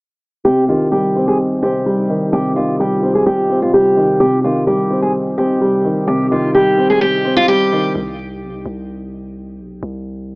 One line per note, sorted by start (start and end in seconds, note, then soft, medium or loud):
0.45 7.91 C2 medium
0.45 1.62 C3 medium
0.45 7.91 C3 medium
0.45 4.17 D#4 medium
0.45 0.63 G4 loud
0.45 2.31 G4 medium
0.68 1.86 D#3 medium
0.68 0.87 F4 medium
0.92 1.85 G3 medium
0.92 1.25 G4 medium
1.16 1.61 C4 medium
1.28 1.37 G#4 medium
1.62 2.80 C4 medium
1.62 2.29 G4 medium
1.86 2.78 G3 medium
2.10 2.55 D#3 medium
2.32 3.50 C3 medium
2.32 4.18 F4 medium
2.32 2.51 G4 loud
2.56 3.73 D#3 medium
2.56 2.75 F4 medium
2.80 3.72 G3 medium
2.80 3.13 G4 medium
3.03 3.48 C4 medium
3.15 3.24 G#4 medium
3.26 3.60 G4 medium
3.50 4.20 C4 medium
3.62 3.71 F4 medium
3.74 4.20 G3 medium
3.74 4.18 G4 medium
3.97 4.20 D#3 medium
4.20 5.37 C3 medium
4.20 7.91 D#4 medium
4.20 4.39 G4 loud
4.20 7.92 G4 medium
4.44 5.61 D#3 medium
4.44 4.62 F4 medium
4.67 5.60 G3 medium
4.67 5.00 G4 medium
4.91 5.36 C4 medium
5.02 5.11 G#4 medium
5.38 6.55 C4 medium
5.38 6.04 G4 medium
5.61 6.53 G3 medium
5.84 6.30 D#3 medium
6.07 7.25 C3 medium
6.07 6.26 G4 medium
6.31 7.48 D#3 medium
6.31 6.50 F4 medium
6.55 7.47 G3 medium
6.55 6.88 G4 medium
6.78 7.23 C4 medium
6.90 6.99 G#4 medium
7.01 7.34 G4 loud
7.25 7.95 C4 medium
7.37 7.46 F4 medium
7.48 7.95 G3 medium
7.48 7.92 G4 medium
7.72 7.96 D#3 medium
7.95 8.44 C2 loud
8.42 8.55 B1 loud
8.54 8.65 C2 loud
8.66 9.61 C2 loud
9.59 9.82 B1 loud
9.83 10.35 C2 loud